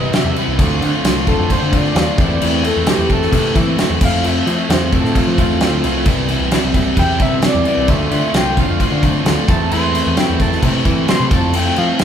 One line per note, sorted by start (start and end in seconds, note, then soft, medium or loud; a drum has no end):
0.00 0.12 C3 medium
0.00 0.13 E3 loud
0.00 0.13 G3 loud
0.00 0.14 B3 loud
0.00 0.14 C4 loud
0.00 0.14 E4 loud
0.00 0.13 D#5 loud
0.13 0.35 C3 medium
0.13 0.36 E3 medium
0.13 0.37 G3 medium
0.13 0.37 B3 loud
0.13 0.38 C4 medium
0.13 0.38 E4 medium
0.13 0.37 E5 loud
0.13 snare loud
0.13 crash medium
0.24 0.34 E2 medium
0.36 0.58 C3 medium
0.36 0.58 E3 medium
0.36 0.59 G3 medium
0.36 0.59 B3 loud
0.36 0.60 C4 loud
0.36 0.59 E4 loud
0.36 crash medium
0.48 0.57 C2 medium
0.59 0.78 D2 loud
0.59 0.81 D3 loud
0.59 0.82 A3 medium
0.59 0.83 C4 loud
0.59 0.83 D4 loud
0.59 0.82 F4 loud
0.59 kick loud
0.59 crash medium
0.81 0.91 D3 loud
0.81 1.03 D3 medium
0.81 1.05 A3 medium
0.81 1.06 C4 loud
0.81 1.05 D4 medium
0.81 1.05 F4 loud
0.81 crash medium
1.04 1.33 C2 loud
1.04 1.26 D3 medium
1.04 1.28 A3 loud
1.04 1.29 C4 medium
1.04 1.27 D4 loud
1.04 1.28 F4 loud
1.04 snare loud
1.04 crash medium
1.27 1.50 D3 medium
1.27 1.52 A3 medium
1.27 1.53 C4 medium
1.27 1.49 D4 loud
1.27 1.52 F4 loud
1.27 1.50 A4 medium
1.27 kick medium
1.27 crash medium
1.39 1.48 F2 medium
1.50 1.72 D3 medium
1.50 1.74 A3 medium
1.50 1.74 C4 medium
1.50 1.72 D4 medium
1.50 1.74 F4 loud
1.50 1.73 C5 medium
1.50 kick medium
1.50 crash medium
1.62 1.90 D3 medium
1.73 1.95 D3 medium
1.73 1.96 A3 loud
1.73 1.97 C4 loud
1.73 1.94 D4 loud
1.73 1.97 F4 loud
1.73 2.64 D5 medium
1.73 kick loud
1.73 crash medium
1.95 2.05 D#2 loud
1.95 2.18 D3 medium
1.95 2.19 A3 medium
1.95 2.20 C4 medium
1.95 2.17 D4 medium
1.95 2.18 F4 medium
1.95 snare loud
1.95 crash medium
2.18 2.37 E2 loud
2.18 2.41 E3 loud
2.18 2.42 A3 loud
2.18 2.43 C4 loud
2.18 2.43 E4 loud
2.18 kick loud
2.18 crash medium
2.41 2.70 E2 loud
2.41 2.63 E3 loud
2.41 2.64 A3 loud
2.41 2.64 C4 medium
2.41 2.65 E4 loud
2.41 crash medium
2.64 2.86 E3 medium
2.64 2.87 A3 medium
2.64 2.88 C4 medium
2.64 2.88 E4 medium
2.64 2.88 A4 medium
2.64 crash medium
2.76 2.86 E2 medium
2.86 3.09 E3 loud
2.86 3.10 A3 medium
2.86 3.10 C4 loud
2.86 3.11 E4 loud
2.86 3.11 G4 medium
2.86 snare loud
2.86 crash medium
2.98 3.27 E2 medium
3.09 3.32 E3 medium
3.09 3.32 A3 medium
3.09 3.33 C4 medium
3.09 3.34 E4 medium
3.09 3.56 A4 medium
3.09 kick medium
3.09 crash medium
3.22 snare soft
3.32 3.51 C3 loud
3.32 3.54 E3 medium
3.32 3.54 A3 loud
3.32 3.56 C4 medium
3.32 3.56 E4 loud
3.32 kick medium
3.32 crash medium
3.55 3.78 E3 loud
3.55 3.74 E3 loud
3.55 3.78 A3 medium
3.55 3.80 C4 loud
3.55 3.80 E4 loud
3.55 kick medium
3.55 crash medium
3.78 4.01 E3 medium
3.78 4.00 A3 medium
3.78 4.02 C4 medium
3.78 4.03 E4 medium
3.78 snare loud
3.78 crash medium
3.90 3.99 E2 medium
4.01 4.39 F2 loud
4.01 4.22 F3 loud
4.01 4.23 A3 loud
4.01 4.24 C4 loud
4.01 4.25 E4 loud
4.01 4.25 F4 loud
4.01 4.25 F5 loud
4.01 kick loud
4.01 crash loud
4.23 4.45 F3 loud
4.23 4.46 A3 medium
4.23 4.47 C4 loud
4.23 4.48 E4 loud
4.23 4.47 F4 loud
4.23 crash medium
4.28 4.70 E5 loud
4.46 4.68 F3 medium
4.46 4.56 F3 loud
4.46 4.68 A3 medium
4.46 4.70 C4 medium
4.46 4.70 E4 medium
4.46 4.71 F4 medium
4.46 crash medium
4.69 4.98 E2 medium
4.69 4.91 F3 medium
4.69 4.92 A3 loud
4.69 4.93 C4 loud
4.69 4.94 E4 loud
4.69 4.93 F4 loud
4.69 snare loud
4.69 crash medium
4.73 4.94 C5 medium
4.92 5.13 F3 medium
4.92 5.14 A3 medium
4.92 5.15 C4 medium
4.92 5.15 E4 loud
4.92 5.16 F4 loud
4.92 5.16 A4 medium
4.92 kick medium
4.92 crash medium
5.04 5.13 A2 medium
5.04 snare soft
5.14 5.36 F3 medium
5.14 5.37 A3 medium
5.14 5.39 C4 medium
5.14 5.38 E4 loud
5.14 5.38 F4 loud
5.14 6.05 F4 loud
5.14 kick medium
5.14 crash medium
5.27 5.36 F3 medium
5.37 5.59 E2 medium
5.37 5.60 F3 medium
5.37 5.60 A3 loud
5.37 5.62 C4 loud
5.37 5.61 E4 loud
5.37 5.61 F4 loud
5.37 kick loud
5.37 crash medium
5.60 5.82 D2 medium
5.60 5.82 F3 medium
5.60 5.82 A3 medium
5.60 5.84 C4 medium
5.60 5.84 E4 loud
5.60 5.84 F4 medium
5.60 snare loud
5.60 crash medium
5.83 6.04 C2 medium
5.83 6.05 F3 medium
5.83 6.05 A3 medium
5.83 6.07 C4 medium
5.83 6.06 E4 loud
5.83 6.06 F4 medium
5.83 crash medium
6.05 6.35 C2 loud
6.05 6.28 C3 loud
6.05 6.28 E3 loud
6.05 6.29 G3 loud
6.05 6.29 B3 loud
6.05 6.30 C4 loud
6.05 6.30 E4 loud
6.05 kick loud
6.05 crash medium
6.28 6.50 C3 medium
6.28 6.51 E3 medium
6.28 6.52 G3 loud
6.28 6.52 B3 loud
6.28 6.53 C4 medium
6.28 6.53 E4 medium
6.28 crash medium
6.40 6.50 C2 medium
6.51 6.73 C3 loud
6.51 6.73 E3 medium
6.51 6.74 G3 loud
6.51 6.74 B3 loud
6.51 6.75 C4 loud
6.51 6.75 E4 loud
6.51 snare loud
6.51 crash medium
6.63 6.92 C2 medium
6.74 6.95 C3 medium
6.74 6.96 E3 medium
6.74 6.96 G3 medium
6.74 6.97 B3 loud
6.74 6.99 C4 loud
6.74 6.98 E4 medium
6.74 kick medium
6.74 crash medium
6.96 7.16 E2 loud
6.96 7.17 C3 medium
6.96 7.18 E3 medium
6.96 7.18 G3 medium
6.96 7.19 B3 medium
6.96 7.22 C4 loud
6.96 7.20 E4 loud
6.96 7.21 G5 loud
6.96 kick medium
6.96 crash medium
7.18 7.41 C3 medium
7.18 7.39 C3 loud
7.18 7.42 E3 loud
7.18 7.42 G3 loud
7.18 7.43 B3 loud
7.18 7.43 E4 loud
7.18 kick loud
7.18 crash medium
7.22 7.45 C4 loud
7.22 7.44 E5 loud
7.42 7.64 C3 medium
7.42 7.64 E3 medium
7.42 7.65 G3 medium
7.42 7.66 B3 loud
7.42 7.67 C4 medium
7.42 7.66 E4 medium
7.42 snare loud
7.42 crash medium
7.46 7.67 D5 loud
7.55 7.64 E2 loud
7.65 7.87 C3 medium
7.65 7.87 E3 medium
7.65 7.88 G3 loud
7.65 7.88 B3 loud
7.65 7.90 C4 loud
7.65 7.88 E4 loud
7.65 7.89 D5 loud
7.65 crash medium
7.77 7.87 C2 medium
7.87 8.08 D2 loud
7.87 8.10 D3 medium
7.87 8.11 A3 loud
7.87 8.12 C4 loud
7.87 8.11 D4 loud
7.87 8.11 F4 loud
7.87 8.34 E5 loud
7.87 kick loud
7.87 crash medium
8.11 8.32 D3 medium
8.11 8.21 D3 loud
8.11 8.34 A3 medium
8.11 8.34 C4 medium
8.11 8.35 D4 medium
8.11 8.34 F4 loud
8.11 crash medium
8.34 8.63 C2 medium
8.34 8.55 D3 loud
8.34 8.57 A3 loud
8.34 8.58 C4 loud
8.34 8.57 D4 loud
8.34 8.57 F4 loud
8.34 8.58 G5 medium
8.34 snare loud
8.34 crash medium
8.57 8.78 D3 medium
8.57 8.80 A3 medium
8.57 8.80 C4 loud
8.57 8.80 D4 loud
8.57 8.80 F4 loud
8.57 9.03 F5 medium
8.57 kick medium
8.57 crash medium
8.69 8.79 F2 medium
8.79 9.01 D3 medium
8.79 9.03 A3 medium
8.79 9.04 C4 medium
8.79 9.03 D4 medium
8.79 9.03 F4 loud
8.79 kick medium
8.79 crash medium
8.92 9.20 D3 medium
9.03 9.24 D3 loud
9.03 9.26 A3 loud
9.03 9.26 C4 loud
9.03 9.25 D4 loud
9.03 9.26 F4 loud
9.03 kick loud
9.03 crash medium
9.25 9.35 D2 loud
9.25 9.47 D3 medium
9.25 9.48 A3 medium
9.25 9.48 C4 medium
9.25 9.48 D4 medium
9.25 9.48 F4 loud
9.25 snare loud
9.25 crash medium
9.48 9.68 E2 loud
9.48 9.69 E3 loud
9.48 9.70 A3 loud
9.48 9.72 C4 loud
9.48 9.72 E4 loud
9.48 9.71 A5 medium
9.48 kick loud
9.48 crash medium
9.71 10.00 E2 loud
9.71 9.93 E3 loud
9.71 9.93 A3 loud
9.71 9.95 C4 loud
9.71 9.95 E4 loud
9.71 10.16 C6 loud
9.71 crash medium
9.94 10.15 E3 medium
9.94 10.16 A3 medium
9.94 10.17 C4 medium
9.94 10.17 E4 loud
9.94 crash medium
10.07 10.16 E2 loud
10.17 10.38 E3 medium
10.17 10.39 A3 loud
10.17 10.41 C4 loud
10.17 10.40 E4 loud
10.17 10.41 G5 medium
10.17 snare loud
10.17 crash medium
10.29 10.58 E2 medium
10.40 10.62 E3 medium
10.40 10.62 A3 loud
10.40 10.64 C4 medium
10.40 10.64 E4 medium
10.40 10.63 A5 medium
10.40 kick medium
10.40 crash medium
10.52 snare soft
10.63 10.82 C3 loud
10.63 10.84 E3 medium
10.63 10.85 A3 medium
10.63 10.86 C4 loud
10.63 10.86 E4 loud
10.63 kick medium
10.63 crash medium
10.85 11.07 E3 loud
10.85 11.05 E3 loud
10.85 11.08 A3 loud
10.85 11.09 C4 medium
10.85 11.09 E4 loud
10.85 kick medium
10.85 crash medium
11.08 11.30 E3 medium
11.08 11.30 A3 medium
11.08 11.32 C4 medium
11.08 11.31 E4 medium
11.08 11.31 C6 loud
11.08 snare loud
11.08 crash medium
11.20 11.30 C3 medium
11.31 11.69 F2 loud
11.31 11.52 F3 loud
11.31 11.53 A3 loud
11.31 11.53 C4 loud
11.31 11.54 E4 loud
11.31 11.53 F4 loud
11.31 11.55 A5 medium
11.31 kick loud
11.31 crash medium
11.53 11.75 F3 medium
11.53 11.76 A3 medium
11.53 11.77 C4 loud
11.53 11.78 E4 loud
11.53 11.77 F4 loud
11.53 11.78 G5 medium
11.53 crash medium
11.76 11.99 F3 medium
11.76 11.87 F3 loud
11.76 11.99 A3 medium
11.76 12.00 C4 medium
11.76 12.00 E4 medium
11.76 11.99 F4 medium
11.76 12.00 F5 medium
11.76 crash medium
11.99 12.04 F3 loud
11.99 12.04 A3 loud
11.99 12.04 C4 loud
11.99 12.04 F4 loud
11.99 snare loud
11.99 crash medium